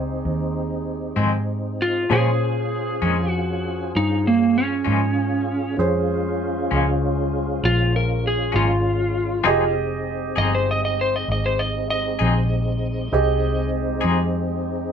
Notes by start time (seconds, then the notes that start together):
Already playing: C#2 C4 D#4 G4 G#4
0.25 D#2
1.16 F2 G#2 D#3 G#3 C4
1.82 F4
2.09 A#2 F3 G#3 C#4 F4 G#4 C5
3.02 F2 A#2 F3 G#3 C#4
3.30 F#4
3.96 G2 D#4
4.27 A#3
4.58 C#4
4.85 G#2 A#2 F3 G#3 C#4
5.77 F2 G#3 C#4 F4 G#4 C5
6.71 C#2 A#2 F3 G#3 C#4
7.63 A#1 F4
7.96 A#4
8.27 G#4
8.52 G#1 A#2 F3 G#3 C#4 F4
9.44 F1 F3 G#3 C4 D#4 G4 G#4 D#5
10.36 G1 F3 C4 D#4 G#4 D#5
10.55 C5
10.71 D#5
10.85 D#5
11.01 C5
11.16 D#5
11.28 G#1 D#5
11.46 C5
11.59 D#5
11.90 D#5
12.19 A#1 F3 C4 D#4 G#4
13.11 C2 G#3 C4 D#4 G4 G#4 D#5
14.01 F2 F3 C4 D#4 G#4